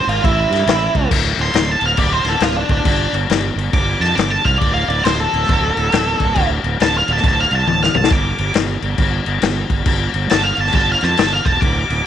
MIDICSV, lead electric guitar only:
0, 0, Header, 1, 2, 480
1, 0, Start_track
1, 0, Tempo, 437637
1, 1215, Time_signature, 4, 2, 24, 8
1, 13236, End_track
2, 0, Start_track
2, 0, Title_t, "Lead electric guitar"
2, 0, Program_c, 0, 29
2, 98, Note_on_c, 0, 65, 92
2, 268, Note_off_c, 0, 65, 0
2, 268, Note_on_c, 0, 64, 98
2, 1193, Note_off_c, 0, 64, 0
2, 1553, Note_on_c, 0, 84, 94
2, 1855, Note_off_c, 0, 84, 0
2, 1881, Note_on_c, 0, 81, 89
2, 2024, Note_off_c, 0, 81, 0
2, 2036, Note_on_c, 0, 77, 90
2, 2179, Note_off_c, 0, 77, 0
2, 2184, Note_on_c, 0, 74, 96
2, 2332, Note_on_c, 0, 72, 98
2, 2335, Note_off_c, 0, 74, 0
2, 2509, Note_off_c, 0, 72, 0
2, 2509, Note_on_c, 0, 69, 95
2, 2658, Note_off_c, 0, 69, 0
2, 2668, Note_on_c, 0, 65, 88
2, 2813, Note_off_c, 0, 65, 0
2, 2813, Note_on_c, 0, 62, 85
2, 2964, Note_off_c, 0, 62, 0
2, 2977, Note_on_c, 0, 62, 101
2, 3442, Note_off_c, 0, 62, 0
2, 4100, Note_on_c, 0, 86, 102
2, 4399, Note_on_c, 0, 81, 97
2, 4409, Note_off_c, 0, 86, 0
2, 4556, Note_on_c, 0, 86, 90
2, 4563, Note_off_c, 0, 81, 0
2, 4721, Note_off_c, 0, 86, 0
2, 4727, Note_on_c, 0, 81, 88
2, 4876, Note_on_c, 0, 77, 94
2, 4887, Note_off_c, 0, 81, 0
2, 5022, Note_off_c, 0, 77, 0
2, 5022, Note_on_c, 0, 74, 96
2, 5194, Note_off_c, 0, 74, 0
2, 5194, Note_on_c, 0, 77, 91
2, 5356, Note_off_c, 0, 77, 0
2, 5356, Note_on_c, 0, 74, 90
2, 5522, Note_off_c, 0, 74, 0
2, 5522, Note_on_c, 0, 72, 91
2, 5704, Note_off_c, 0, 72, 0
2, 5704, Note_on_c, 0, 69, 97
2, 7098, Note_off_c, 0, 69, 0
2, 7479, Note_on_c, 0, 81, 97
2, 7624, Note_off_c, 0, 81, 0
2, 7649, Note_on_c, 0, 77, 92
2, 7789, Note_off_c, 0, 77, 0
2, 7818, Note_on_c, 0, 81, 88
2, 7954, Note_off_c, 0, 81, 0
2, 7988, Note_on_c, 0, 81, 99
2, 8119, Note_off_c, 0, 81, 0
2, 8120, Note_on_c, 0, 77, 90
2, 8265, Note_off_c, 0, 77, 0
2, 8282, Note_on_c, 0, 81, 100
2, 8414, Note_off_c, 0, 81, 0
2, 8427, Note_on_c, 0, 81, 94
2, 8578, Note_off_c, 0, 81, 0
2, 8583, Note_on_c, 0, 77, 79
2, 8736, Note_off_c, 0, 77, 0
2, 8742, Note_on_c, 0, 81, 103
2, 8895, Note_off_c, 0, 81, 0
2, 8915, Note_on_c, 0, 86, 88
2, 9372, Note_off_c, 0, 86, 0
2, 11305, Note_on_c, 0, 81, 92
2, 11446, Note_on_c, 0, 77, 103
2, 11457, Note_off_c, 0, 81, 0
2, 11607, Note_off_c, 0, 77, 0
2, 11634, Note_on_c, 0, 81, 86
2, 11781, Note_off_c, 0, 81, 0
2, 11800, Note_on_c, 0, 81, 102
2, 11944, Note_off_c, 0, 81, 0
2, 11978, Note_on_c, 0, 77, 97
2, 12104, Note_on_c, 0, 81, 102
2, 12114, Note_off_c, 0, 77, 0
2, 12257, Note_off_c, 0, 81, 0
2, 12283, Note_on_c, 0, 81, 100
2, 12426, Note_off_c, 0, 81, 0
2, 12430, Note_on_c, 0, 77, 93
2, 12559, Note_on_c, 0, 81, 108
2, 12579, Note_off_c, 0, 77, 0
2, 12724, Note_off_c, 0, 81, 0
2, 12730, Note_on_c, 0, 86, 96
2, 13200, Note_off_c, 0, 86, 0
2, 13236, End_track
0, 0, End_of_file